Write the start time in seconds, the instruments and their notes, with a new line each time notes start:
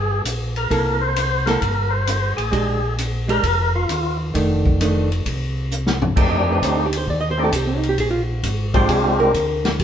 Already playing: tonewheel organ G1 G#4
0.24 tonewheel organ A#1, hi-hat pedal, ride
0.56 tonewheel organ A#4, ride
0.70 tonewheel organ C2, hollow-body jazz guitar A#3 E4 A4, kick, ride
1.01 tonewheel organ C5
1.16 hi-hat pedal, ride
1.46 hollow-body jazz guitar A#3 E4 A4, tonewheel organ A#4, snare, ride
1.61 tonewheel organ G1, kick, ride
1.90 tonewheel organ C5
2.07 hi-hat pedal, ride
2.37 tonewheel organ A1 G#4, ride
2.51 tonewheel organ A#1, hollow-body jazz guitar G#3 D4 G4, kick, ride
2.98 hi-hat pedal, ride
3.28 hollow-body jazz guitar G#3 D4 G4, tonewheel organ A#4, ride
3.43 tonewheel organ F1, kick, ride
3.75 tonewheel organ F4
3.88 tonewheel organ D#2, hi-hat pedal, ride
4.34 tonewheel organ F1, hollow-body jazz guitar D#3 A3 D4, kick, ride
4.66 kick
4.80 hollow-body jazz guitar D#3 A3 D4, hi-hat pedal, ride
5.12 ride
5.25 tonewheel organ C2, kick, ride
5.71 hi-hat pedal
5.87 snare
6.02 floor tom
6.16 tonewheel organ F2 A3 C4 D4 D#4 G4, kick, crash
6.29 hollow-body jazz guitar D#5
6.39 hollow-body jazz guitar D5
6.52 hollow-body jazz guitar B4
6.62 tonewheel organ D2, hollow-body jazz guitar C5, kick, hi-hat pedal, ride
6.75 hollow-body jazz guitar D#4
6.86 hollow-body jazz guitar G4
6.93 ride
6.97 hollow-body jazz guitar C5
7.07 tonewheel organ D#2, hollow-body jazz guitar D5, kick
7.21 hollow-body jazz guitar D#5
7.31 hollow-body jazz guitar C5
7.37 tonewheel organ A3 C4 D4 D#4 G4
7.44 hollow-body jazz guitar A4
7.52 tonewheel organ C2, hollow-body jazz guitar G4, kick, hi-hat pedal, ride
7.67 hollow-body jazz guitar C4
7.77 hollow-body jazz guitar D#4
7.83 ride
7.89 hollow-body jazz guitar G4
7.98 tonewheel organ A#1, hollow-body jazz guitar G#4, kick, ride
8.11 hollow-body jazz guitar F4
8.43 tonewheel organ G#1, kick, hi-hat pedal, ride
8.74 tonewheel organ G#3 C4 D4 F4 G4, hollow-body jazz guitar C5, kick, ride
8.88 tonewheel organ C2, hollow-body jazz guitar G#4, kick, ride
9.20 hollow-body jazz guitar A#4
9.34 tonewheel organ D2, kick, hi-hat pedal, ride
9.65 snare, ride
9.79 tonewheel organ F2, hollow-body jazz guitar G4, kick, ride